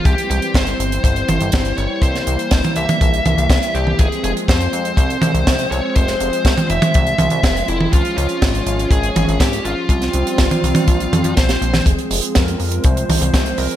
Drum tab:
HH |xxxxxxxxxxxxxxx-|xxxxxxxxxxxxxxx-|xxxxxxxxxxxxxxx-|xxxxxxxxxxxxxxx-|
SD |----o-------o---|-o--o-------o---|----o-------o---|-o--o-------o---|
T1 |----------o-----|-----o-o--o----o|----------o-----|-----o-o--o----o|
BD |o---o---o---o---|o---o---o---o---|o---o---o---o---|o---o---o---o---|

HH |xxxxxxxxxxxxxxx-|xxxxxxxxxxxxxxxx|xxoxxxoxxxoxxxox|
SD |----o-------o---|-o--o-------oo-o|----o-------o---|
T1 |----------o-----|-----o-o--o----o|----------o-----|
BD |o---o---o---o---|o---o---o---o---|o---o---o---o---|